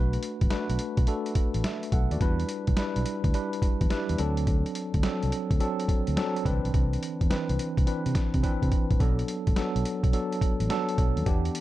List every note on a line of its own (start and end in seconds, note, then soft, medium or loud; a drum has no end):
0.00 0.16 B1 loud
0.00 0.36 A3 medium
0.00 0.36 D4 medium
0.00 0.36 F#4 medium
0.00 0.36 B4 medium
0.13 closed hi-hat soft
0.23 closed hi-hat medium
0.41 0.49 A1 medium
0.41 kick medium
0.41 closed hi-hat soft
0.50 0.92 A3 medium
0.50 0.92 D4 medium
0.50 0.93 F#4 medium
0.50 0.93 B4 medium
0.50 muted fingered electric bass stroke soft
0.50 snare medium
0.50 closed hi-hat medium
0.69 0.77 B1 medium
0.69 closed hi-hat medium
0.79 closed hi-hat medium
0.97 1.05 B1 medium
0.97 kick medium
0.97 closed hi-hat medium
1.07 1.49 A3 medium
1.07 1.49 D4 medium
1.07 1.36 F#4 medium
1.07 1.36 A4 medium
1.07 closed hi-hat medium
1.26 closed hi-hat soft
1.35 muted fingered electric bass stroke soft
1.35 kick medium
1.35 closed hi-hat medium
1.54 1.62 A1 medium
1.54 closed hi-hat medium
1.64 1.91 E5 medium
1.64 snare loud
1.64 closed hi-hat medium
1.83 closed hi-hat soft
1.92 2.07 B1 medium
1.92 2.11 A4 medium
1.92 2.10 F#5 medium
1.92 kick medium
1.92 closed hi-hat medium
2.11 2.18 D#2 medium
2.11 2.39 F#4 medium
2.11 2.38 D5 medium
2.11 closed hi-hat soft
2.21 2.42 E2 loud
2.21 2.62 G3 medium
2.21 2.63 D4 medium
2.21 2.63 E4 medium
2.21 2.63 B4 loud
2.21 kick loud
2.21 closed hi-hat medium
2.40 closed hi-hat medium
2.49 closed hi-hat medium
2.67 2.75 B1 medium
2.67 kick medium
2.67 closed hi-hat soft
2.77 3.19 G3 medium
2.77 3.19 D4 medium
2.77 3.19 E4 medium
2.77 3.19 B4 medium
2.77 muted fingered electric bass stroke soft
2.77 snare loud
2.77 closed hi-hat medium
2.96 3.04 B1 medium
2.96 closed hi-hat soft
3.06 closed hi-hat medium
3.24 3.32 D2 medium
3.24 kick medium
3.24 closed hi-hat medium
3.34 3.75 G3 medium
3.34 3.76 D4 medium
3.34 3.76 E4 medium
3.34 3.76 B4 medium
3.34 closed hi-hat medium
3.53 closed hi-hat soft
3.62 muted fingered electric bass stroke soft
3.62 kick medium
3.62 closed hi-hat medium
3.81 3.88 E2 medium
3.81 kick medium
3.81 closed hi-hat medium
3.90 4.19 G3 medium
3.90 4.18 D4 medium
3.90 4.19 E4 medium
3.90 4.19 B4 medium
3.90 muted fingered electric bass stroke soft
3.90 snare loud
3.90 closed hi-hat medium
4.09 4.17 E2 medium
4.09 closed hi-hat soft
4.18 4.63 D2 medium
4.18 4.90 F#3 medium
4.18 4.90 C4 medium
4.18 4.91 D4 medium
4.18 4.91 A4 medium
4.18 closed hi-hat medium
4.37 closed hi-hat medium
4.47 kick loud
4.47 closed hi-hat medium
4.66 closed hi-hat soft
4.75 closed hi-hat medium
4.94 5.02 D2 medium
4.94 kick medium
4.94 closed hi-hat soft
5.03 5.45 F#3 medium
5.03 5.45 C4 medium
5.03 5.45 D4 medium
5.03 5.46 A4 medium
5.03 muted fingered electric bass stroke soft
5.03 snare loud
5.03 closed hi-hat medium
5.23 5.30 C2 medium
5.23 closed hi-hat soft
5.32 closed hi-hat medium
5.51 5.58 D2 medium
5.51 kick medium
5.51 closed hi-hat medium
5.60 6.02 F#3 medium
5.60 6.02 C4 medium
5.60 6.02 D4 medium
5.60 6.02 A4 medium
5.60 closed hi-hat medium
5.80 closed hi-hat medium
5.88 muted fingered electric bass stroke soft
5.88 kick medium
5.88 closed hi-hat medium
6.07 6.15 D2 medium
6.07 closed hi-hat medium
6.16 6.45 F#3 medium
6.16 6.44 C4 medium
6.16 6.44 D4 medium
6.16 6.45 A4 loud
6.16 snare loud
6.16 closed hi-hat medium
6.36 closed hi-hat soft
6.45 6.60 C2 loud
6.45 6.54 D3 medium
6.45 7.17 C4 medium
6.45 7.17 D4 medium
6.45 7.17 B4 medium
6.45 kick medium
6.45 closed hi-hat medium
6.51 7.20 E3 medium
6.64 6.72 B1 medium
6.64 closed hi-hat soft
6.74 6.96 C2 medium
6.74 kick loud
6.74 closed hi-hat medium
6.93 closed hi-hat soft
7.03 closed hi-hat medium
7.21 7.28 E2 medium
7.21 kick medium
7.21 closed hi-hat soft
7.30 7.72 E3 medium
7.30 7.72 C4 medium
7.30 7.72 D4 medium
7.30 7.72 B4 medium
7.30 muted fingered electric bass stroke soft
7.30 snare loud
7.30 closed hi-hat medium
7.49 7.57 C2 medium
7.49 closed hi-hat soft
7.59 closed hi-hat medium
7.77 7.85 C2 medium
7.77 kick medium
7.77 closed hi-hat medium
7.86 8.28 E3 medium
7.86 8.28 C4 medium
7.86 8.28 D4 medium
7.86 8.29 B4 medium
7.86 closed hi-hat medium
8.06 8.13 C3 loud
8.06 closed hi-hat soft
8.15 kick medium
8.15 snare medium
8.15 closed hi-hat medium
8.34 8.41 C3 loud
8.34 kick medium
8.34 closed hi-hat medium
8.43 8.85 E3 medium
8.43 8.85 C4 medium
8.43 8.85 D4 medium
8.43 8.85 B4 loud
8.43 kick medium
8.43 closed hi-hat medium
8.62 8.70 C3 medium
8.62 kick medium
8.62 closed hi-hat soft
8.72 kick medium
8.72 closed hi-hat medium
8.91 8.98 A#1 medium
8.91 kick medium
8.91 closed hi-hat soft
9.00 9.22 B1 loud
9.00 9.41 F#3 medium
9.00 9.42 B3 medium
9.00 9.42 D4 medium
9.00 9.42 A4 medium
9.00 kick loud
9.00 closed hi-hat medium
9.19 closed hi-hat medium
9.28 closed hi-hat medium
9.47 9.55 A1 medium
9.47 kick medium
9.47 closed hi-hat soft
9.56 9.98 F#3 medium
9.56 9.98 B3 medium
9.56 9.98 D4 medium
9.56 9.99 A4 medium
9.56 muted fingered electric bass stroke soft
9.56 snare loud
9.56 closed hi-hat medium
9.76 9.83 B1 medium
9.76 closed hi-hat medium
9.85 closed hi-hat medium
10.04 10.11 B1 medium
10.04 kick medium
10.04 closed hi-hat medium
10.13 10.55 F#3 medium
10.13 10.55 B3 medium
10.13 10.55 D4 medium
10.13 10.55 A4 medium
10.13 closed hi-hat medium
10.32 closed hi-hat soft
10.41 muted fingered electric bass stroke soft
10.41 kick medium
10.41 closed hi-hat medium
10.60 10.67 A1 medium
10.60 closed hi-hat medium
10.69 11.11 F#3 medium
10.69 11.11 B3 medium
10.69 11.12 D4 medium
10.69 11.12 A4 loud
10.69 snare loud
10.69 closed hi-hat medium
10.89 closed hi-hat soft
10.98 11.12 B1 medium
10.98 kick medium
10.98 closed hi-hat medium
11.16 11.24 D#2 medium
11.16 closed hi-hat soft
11.25 11.48 E2 loud
11.25 11.61 E3 medium
11.25 11.61 B3 medium
11.25 11.61 D4 medium
11.25 11.61 G4 medium
11.25 kick loud
11.25 closed hi-hat medium
11.45 closed hi-hat medium
11.55 closed hi-hat medium